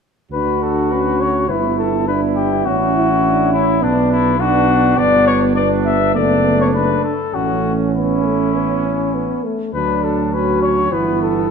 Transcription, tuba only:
0.31 1.51 D2 soft
1.49 2.66 G1 soft
2.66 3.83 A1 soft
3.82 4.97 B1 soft
4.98 6.16 G1 medium
6.15 7.05 F#1 soft
7.33 9.40 A1 soft
9.74 10.88 D2 soft
10.92 11.51 G1 soft

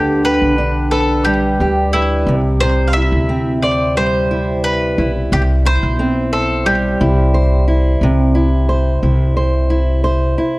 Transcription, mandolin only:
0.00 0.22 G4 medium
0.25 0.91 B4 medium
0.91 1.23 A4 medium
1.25 1.93 G4 medium
1.93 2.40 E4 medium
2.61 2.89 C5 loud
2.88 2.95 F5 medium
2.93 3.58 E5 loud
3.63 3.94 D5 medium
3.97 4.64 C5 medium
4.64 5.11 B4 medium
5.33 5.42 G4 medium
5.67 6.32 C5 medium
6.33 6.67 A4 medium
6.66 7.64 G4 medium

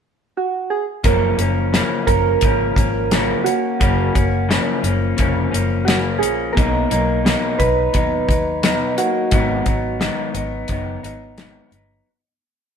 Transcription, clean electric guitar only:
1.04 1.38 F#2 medium
1.04 1.39 C#3 medium
1.04 1.39 F3 medium
1.04 1.39 A#3 medium
1.04 1.37 C#4 medium
1.39 1.72 F3 soft
1.39 1.73 A#3 soft
1.39 1.73 C#4 medium
1.72 2.07 F#2 medium
1.72 2.08 C#3 medium
1.72 2.08 F3 medium
1.72 2.08 A#3 medium
1.72 2.06 C#4 medium
2.07 2.42 F3 soft
2.07 2.43 A#3 soft
2.07 2.42 C#4 soft
2.42 2.77 C#3 soft
2.42 2.78 F3 soft
2.42 2.78 A#3 soft
2.42 2.76 C#4 medium
2.78 3.11 F3 soft
2.78 3.12 A#3 soft
2.78 3.12 C#4 soft
3.12 3.46 F#2 medium
3.12 3.46 C#3 medium
3.12 3.47 F3 medium
3.12 3.46 A#3 medium
3.12 3.44 C#4 medium
3.45 3.80 A#3 soft
3.45 3.80 C#4 soft
3.80 4.15 F#2 medium
3.80 4.15 C#3 medium
3.80 4.15 A#3 medium
3.80 4.13 C#4 medium
4.14 4.49 A#3 soft
4.14 4.49 C#4 soft
4.49 4.84 F#2 medium
4.49 4.84 C#3 medium
4.49 4.83 F3 medium
4.49 4.82 A#3 medium
4.49 4.81 C#4 medium
4.82 5.17 F3 soft
4.82 5.18 A#3 soft
4.82 5.18 C#4 medium
5.17 5.52 C#3 medium
5.17 5.53 F3 medium
5.17 5.51 A#3 medium
5.17 5.50 C#4 medium
5.51 5.88 F3 soft
5.51 5.87 A#3 soft
5.51 5.87 C#4 medium
5.86 6.21 F#2 medium
5.86 6.22 C#3 medium
5.86 6.21 A#3 medium
5.86 6.19 C#4 medium
6.20 6.56 F3 soft
6.20 6.56 A#3 soft
6.20 6.56 C#4 medium
6.55 6.90 B2 medium
6.55 6.91 F#3 medium
6.55 6.91 A#3 medium
6.55 6.89 D#4 medium
6.90 7.25 F#3 soft
6.90 7.25 A#3 soft
6.90 7.25 D#4 medium
7.25 7.60 B2 medium
7.25 7.60 F#3 medium
7.25 7.60 A#3 medium
7.25 7.59 D#4 medium
7.60 7.94 F#3 soft
7.60 7.95 D#4 soft
7.93 8.28 B2 soft
7.93 8.29 F#3 medium
7.93 8.27 D#4 medium
8.28 8.62 F#3 soft
8.28 8.63 D#4 soft
8.63 8.98 B2 medium
8.63 8.98 F#3 medium
8.63 8.96 D#4 medium
8.97 9.31 F#3 soft
8.97 9.33 A#3 soft
8.97 9.32 D#4 soft
9.31 9.66 G#2 medium
9.31 9.67 D#3 medium
9.31 9.67 F#3 medium
9.31 9.66 B3 medium
9.31 9.64 D#4 medium
9.66 10.00 F#3 soft
9.66 10.00 B3 soft
9.66 10.00 D#4 soft
10.00 10.35 G#2 medium
10.00 10.35 D#3 medium
10.00 10.35 F#3 medium
10.00 10.35 B3 medium
10.00 10.33 D#4 medium
10.34 10.69 F#3 soft
10.34 10.70 B3 soft
10.34 10.69 D#4 medium
10.69 11.04 D#3 soft
10.69 11.04 F#3 soft
10.69 11.03 B3 medium
10.69 11.02 D#4 medium
11.03 11.37 F#3 soft
11.03 11.38 B3 soft
11.03 11.38 D#4 medium
11.37 11.72 G#2 medium
11.37 11.73 D#3 medium
11.37 11.73 F#3 medium
11.37 11.73 B3 medium
11.37 11.72 D#4 medium
11.73 12.08 F#3 soft
11.73 12.08 B3 soft
11.73 12.07 D#4 soft

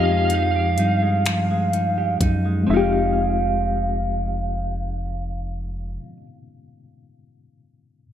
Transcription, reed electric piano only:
0.00 2.64 F3 medium
0.00 2.64 C4 medium
0.00 2.65 D#4 medium
0.00 2.66 F4 medium
0.00 2.67 G4 medium
2.63 5.91 G#3 medium
2.63 5.94 C4 medium
2.70 5.97 D#4 medium
2.70 6.01 F4 medium
2.77 6.04 G4 medium

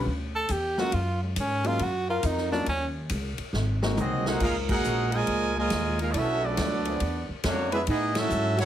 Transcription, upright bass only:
0.06 0.48 D2 medium
0.49 0.92 E2 medium
0.93 1.35 F#2 loud
1.36 1.79 G#2 medium
1.79 2.22 F#2 medium
2.23 2.65 F2 loud
2.67 3.09 D#2 medium
3.10 3.37 C#2 loud
3.38 muted upright bass stroke soft
3.53 3.95 G#1 medium
3.97 4.39 C2 medium
4.40 4.82 C#2 loud
4.84 5.26 A#1 medium
5.27 5.69 C#2 medium
5.71 6.13 D#2 medium
6.14 6.56 B1 medium
6.57 6.99 D2 loud
7.00 7.27 E2 loud
7.29 muted upright bass stroke soft
7.44 7.86 F2 loud
7.87 8.29 A2 medium
8.31 8.65 G#2 loud

